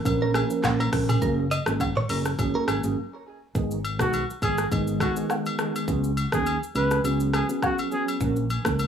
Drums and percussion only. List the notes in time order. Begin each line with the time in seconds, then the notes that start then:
0.05 kick, high agogo, shaker
0.34 cross-stick, high agogo, shaker
0.50 shaker
0.64 kick, cross-stick, clap, low woodblock, shaker
0.80 high agogo
0.93 kick, cross-stick, open hi-hat, shaker
1.09 mid tom, high agogo, shaker
1.22 kick, shaker
1.51 high agogo, shaker
1.66 cross-stick, shaker
1.80 kick, high agogo, low woodblock, shaker
1.96 mid tom
2.09 open hi-hat, high agogo, shaker
2.25 cross-stick, shaker
2.39 kick, high agogo, shaker
2.68 cross-stick, high agogo, shaker
2.84 shaker
3.55 kick, shaker
3.71 shaker
3.85 high agogo, shaker
3.99 kick, cross-stick, shaker
4.13 high agogo, shaker
4.30 shaker
4.42 kick, high agogo, shaker
4.58 cross-stick, shaker
4.72 kick, high agogo, shaker
4.87 shaker
5.00 kick, cross-stick, high agogo, shaker
5.16 shaker
5.30 cross-stick, low woodblock, shaker
5.46 high agogo, shaker
5.59 cross-stick, shaker
5.76 high agogo, shaker
5.88 kick, shaker
6.04 shaker
6.17 high agogo, shaker
6.32 kick, cross-stick, shaker
6.46 high agogo, shaker
6.63 shaker
6.75 high agogo, shaker
6.91 cross-stick, shaker
7.04 high agogo, shaker
7.20 shaker
7.34 cross-stick, high agogo, shaker
7.49 shaker
7.62 kick, cross-stick, low woodblock, shaker
7.78 high agogo, shaker
7.92 shaker
8.08 high agogo, shaker
8.21 kick, shaker
8.36 shaker
8.50 high agogo, shaker
8.65 kick, cross-stick, shaker
8.79 high agogo, shaker